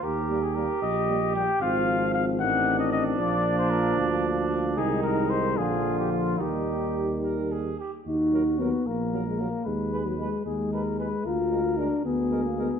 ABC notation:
X:1
M:6/8
L:1/16
Q:3/8=75
K:Eb
V:1 name="Flugelhorn"
G12 | F4 z2 D6- | D12 | E6 F6 |
G6 B2 A2 G2 | [K:Ebm] z2 B2 B2 z2 B2 B2 | z2 c2 c2 z2 c2 c2 | z2 B2 B2 z2 B2 B2 |]
V:2 name="Trumpet"
B3 A B2 e4 g2 | f4 f2 ^f3 e e2 | d3 c B2 z6 | A2 B2 c2 A3 G F2 |
E6 z6 | [K:Ebm] G6 B6 | c6 A2 B2 c2 | B6 A6 |]
V:3 name="French horn"
z2 B,2 B,2 z2 B,2 B,2 | C6 C6 | B,12 | A,6 F,6 |
G,8- G,2 z2 | [K:Ebm] E4 C2 B,3 A, B,2 | A,3 G, A,2 A,6 | F4 =D2 C3 B, C2 |]
V:4 name="Trombone" clef=bass
z2 G,2 G,2 z2 G,2 G,2 | F,6 E,6 | F,12 | E,6 D,6 |
E,8- E,2 z2 | [K:Ebm] z2 G,2 G,2 z2 G,2 G,2 | z2 A,2 A,2 z2 A,2 A,2 | z2 A,2 A,2 z2 A,2 A,2 |]
V:5 name="Tuba" clef=bass
E,,6 B,,,6 | A,,,6 =A,,,6 | B,,,6 D,,6 | C,,6 B,,,6 |
E,,8- E,,2 z2 | [K:Ebm] E,,6 B,,,6 | E,,6 E,,6 | =D,,6 D,,6 |]